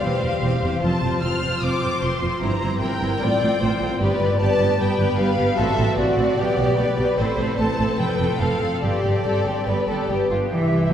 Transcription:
Already playing: G3 G4 F5
0.02 E1 E2 E3 C4 G4 C5
0.22 E1 E2 C4 G4
0.43 E1 E2 C4 G4 C5
0.62 E1 E2 C4 G4
0.82 F1 F2 F3 C4 F4 A5
1.02 F1 F2 C4 F4
1.22 F1 F2 C4 F4 C5 F6
1.42 F1 F2 C4 F4
1.62 F1 F2 C4 F4 D6
1.82 F1 F2 C4 F4
2.02 F1 F2 C4 F4 C5 C6
2.22 F1 F2 C4 F4
2.42 G1 G2 C4 E4 A#5
2.61 G1 G2 C4 E4
2.81 G1 G2 C4 E4 A#4 C5 G5
3.01 G1 G2 C4 E4
3.21 A1 A2 C4 F4 D5
3.41 A1 A2 C4 F4
3.61 A1 A2 C4 F4 C5
3.81 A1 A2 C4 F4
4.00 G1 G2 B3 G4 B4 D5
4.20 G1 G2 B3 G4
4.39 G1 G2 B3 G4 B4 D5 A5
4.59 G1 G2 B3 G4
4.79 G1 G2 D3 B3 G4 B4 G5
4.98 G1 G2 B3 D4 G4
5.17 G1 G2 B3 G4 B4 F5
5.37 G1 G2 B3 G4
5.57 A1 A2 C4 F#4 A4 E5
5.77 A1 A2 C4 D4 F#4
5.96 A1 A2 C4 F#4 C5 D5
6.17 A1 A2 C4 F#4
6.37 B1 B2 B3 G4
6.58 B1 B2 B3 G4
6.78 B1 B2 B3 G4 B4
6.98 B1 B2 B3 G4
7.18 A1 A2 C4 A4 C5
7.38 A1 A2 C4 E4 A4
7.58 A1 A2 C4 A4 C5 A5
7.77 A1 A2 C4 A4
7.98 F1 F2 C4 A4 B4 G5
8.19 F1 F2 C4 F4 A4
8.40 F1 F2 C4 A4 C5 F5
8.61 F1 F2 C4 A4
8.82 G1 G2 C4 G4 D5
9.04 G1 G2 C4 G4
9.25 G1 G2 C4 G4 A4 C5
9.46 G1 G2 C4 G4
9.67 G1 G2 B3 G4 B4
9.88 G1 G2 B3 D4 G4 A4
10.09 G1 G2 B3 G4 B4
10.30 G1 G2 B3 F4 G4
10.51 C2 C3 E3 E4 G4 E5 G5
10.62 E4
10.72 C5
10.82 G5

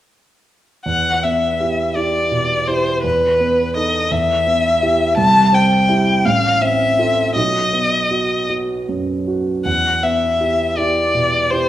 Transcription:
0.86 E2 F#5
1.23 B3 E5
1.60 E4 G4
1.96 E4 G4 D5
2.32 B2
2.68 E4 G4 C5
3.04 E2 B4
3.40 B3
3.75 D#4 A4 D#5
4.11 E2 E5
4.46 B3
4.82 E4 G4
5.17 C2 A5
5.52 C4 G5
5.89 E4 G4
6.25 A1 F5
6.61 C4 E5
6.99 F4 A4
7.36 B1 D#5
7.73 B3
8.11 F#4
8.50 F#4
8.89 F#2
9.28 F#4
9.65 E2 F#5
10.03 B3 E5
10.40 E4 G4
10.77 E4 G4 D5
11.14 B2
11.51 E4 G4 C5

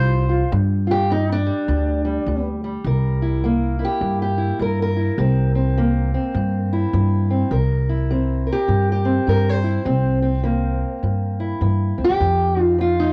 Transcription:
Already playing: C2 F3 F4 C5
0.29 F4
0.52 G2
0.87 F4
0.91 G4
1.10 G2 D#4
1.32 D4
1.46 G3
1.68 D2 G2
2.05 G3
2.26 D2 G2
2.64 G3
2.84 C2 C3 A#4
3.22 E4
3.44 G3 A#3
3.79 E4
3.85 G4
4.01 G2
4.22 G4
4.38 E4
4.59 G2 G3 A#4
4.82 A#4
4.96 E4
5.18 C2 C3 C4
5.55 C4
5.77 E3 A#3
6.14 C4
6.35 G2
6.73 E4
6.93 G2 E3
7.30 C4
7.51 C2 C3 A#4
7.89 E4
8.11 G3 C4
8.47 A#4
8.53 G4
8.68 G2 C3
8.92 G4
9.05 C4
9.27 G2 G3 A#4
9.49 C5
9.64 E4
9.85 C2 C3 C4
10.22 C4
10.43 E3 A#3
11.03 G2
11.40 E4
11.61 G2 E3
11.98 D2 C4
12.04 G4
12.10 E2
12.20 F2
12.56 D#4
12.61 F4
12.78 F3 F4
13.00 D#4

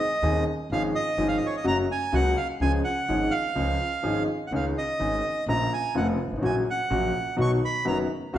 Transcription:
Already playing: D#5
0.22 D#1 D#2 D#3 G#3 C4 G#4
0.70 G#1 G#2 F3 G#3 C#4 G#4 F5
0.95 D#5
1.17 G#1 G#2 F3 G#3 C#4 G#4
1.28 F5
1.38 D#5
1.46 C#5
1.57 D#5
1.64 F#1 F#2 C#3 F#3 A#3 F#4 A#5
1.92 G#5
2.12 C#2 C#3 F#3 A#3 F#4 F#5
2.37 F5
2.60 C#2 C#3 F3 G#3 C#4 G#4 G#5
2.84 F#5
3.08 G#1 G#2 F3 G#3 C#4 G#4
3.31 F5
3.55 C#2 C#3 F3 G#3 C#4 G#4
4.03 G#1 G#2 F3 G#3 C#4 G#4
4.47 F#5
4.51 C#2 C#3 D#3 G#3 C#4 G#4
4.55 F5
4.78 D#5
4.99 G#1 G#2 D#3 G#3 C#4 G#4
5.46 A#1 A#2 C#3 F3 A#3 F4 A#5
5.74 G#5
5.95 F1 F2 C#3 F3 A#3 F4 F#5
6.25 G1
6.31 G#1
6.36 A1
6.42 A#1 A#2 C#3 F#3 A#3 F#4 G#5
6.70 F#5
6.90 A#1 A#2 C#3 F#3 A#3 F#4
7.36 B1 B2 D#3 F#3 B3 F#4
7.41 C#6
7.65 B5
7.85 F#1 F#2 D#3 F#3 B3 F#4 A#5
8.33 C2 C3 D#3 G#3 C4 F#4

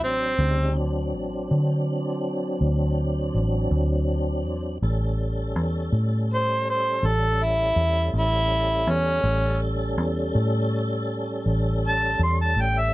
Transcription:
Already playing: F#3 D4 C5
0.02 A1 C4
0.39 D2 C#3 G3 D#4
0.76 F#3 C4 D4
1.14 A1
1.51 D3
2.61 D2
3.34 A1
3.71 D2
4.45 E2
4.82 A1 G3 C#4 A4
5.56 E2
5.92 A2
6.34 C5
6.70 C5
7.03 A1 A4
7.43 E4
7.76 E2
8.14 A1
8.18 E4
8.87 E2 C#4
9.24 A1 G3 C#4 A4
9.98 E2
10.35 A2
11.46 A1
11.87 A5
12.19 E2
12.24 C6
12.41 A5
12.56 A1
12.61 G5
12.79 E5

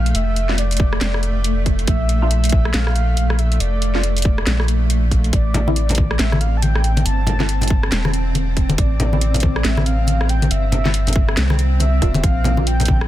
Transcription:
Already playing: A#1 A3 F5
0.06 closed hi-hat
0.15 F1 E5, closed hi-hat
0.36 closed hi-hat
0.49 A#3 D4 F4, snare
0.58 D5, closed hi-hat
0.71 closed hi-hat
0.77 kick, closed hi-hat
0.93 cross-stick
1.01 F1 D5, snare, closed hi-hat
1.14 cross-stick
1.23 closed hi-hat
1.44 closed hi-hat
1.66 kick, closed hi-hat
1.79 closed hi-hat
1.87 A#1 E5, kick, closed hi-hat
2.09 closed hi-hat
2.22 A#3 D4 F4
2.31 closed hi-hat
2.44 closed hi-hat
2.49 kick, closed hi-hat
2.65 cross-stick
2.74 A#1 F5, snare, closed hi-hat
2.87 cross-stick
2.96 closed hi-hat
3.17 closed hi-hat
3.30 cross-stick
3.39 E5, closed hi-hat
3.52 closed hi-hat
3.60 F1 D5, closed hi-hat
3.82 closed hi-hat
3.95 A#3 D4 F4, snare
4.04 closed hi-hat
4.17 closed hi-hat
4.22 kick, closed hi-hat
4.38 cross-stick
4.47 A#1, snare, closed hi-hat
4.60 cross-stick
4.68 closed hi-hat
4.90 closed hi-hat
5.11 kick, closed hi-hat
5.24 closed hi-hat
5.33 A1 C4 D5, kick, closed hi-hat
5.54 closed hi-hat, low conga
5.67 A3 C4 E4, high conga
5.76 closed hi-hat
5.89 closed hi-hat, low conga
5.95 kick, closed hi-hat, high conga
6.11 cross-stick
6.19 A1 E5, snare, closed hi-hat
6.32 cross-stick, high conga
6.41 F5, closed hi-hat
6.57 A5
6.62 G5, closed hi-hat, high conga
6.75 cross-stick
6.84 closed hi-hat
6.97 closed hi-hat, high conga
7.05 G1 A5, closed hi-hat
7.27 closed hi-hat, low conga
7.40 A3 C4 E4, snare, high conga
7.49 closed hi-hat
7.61 closed hi-hat, low conga
7.68 kick, closed hi-hat
7.83 cross-stick
7.92 E1, snare, closed hi-hat
8.05 cross-stick, high conga
8.14 closed hi-hat
8.35 closed hi-hat, high conga
8.57 kick, closed hi-hat
8.69 closed hi-hat, high conga
8.78 A1 D5, kick, closed hi-hat
9.00 closed hi-hat, low conga
9.13 A3 C4 E4, high conga
9.21 closed hi-hat
9.34 closed hi-hat, low conga
9.40 kick, closed hi-hat, high conga
9.56 cross-stick
9.65 A1 E5, snare, closed hi-hat
9.77 cross-stick, high conga
9.86 F5, closed hi-hat
10.07 closed hi-hat, high conga
10.21 cross-stick
10.29 G5, closed hi-hat
10.42 closed hi-hat, high conga
10.51 G1 E5, closed hi-hat
10.72 closed hi-hat, low conga
10.85 A3 C4 E4, snare, high conga
10.94 closed hi-hat
11.07 closed hi-hat, low conga
11.13 kick, closed hi-hat
11.29 cross-stick
11.37 C2, snare, closed hi-hat
11.50 cross-stick, high conga
11.59 closed hi-hat
11.80 E5, closed hi-hat, high conga
12.02 E1 A#3 D4 F4, kick, closed hi-hat
12.14 closed hi-hat, high conga
12.24 A#1 F5, kick, closed hi-hat
12.44 closed hi-hat, low conga
12.57 A#3 D4 F4, high conga
12.67 G5, closed hi-hat
12.80 closed hi-hat, low conga
12.86 kick, closed hi-hat, high conga
13.01 cross-stick

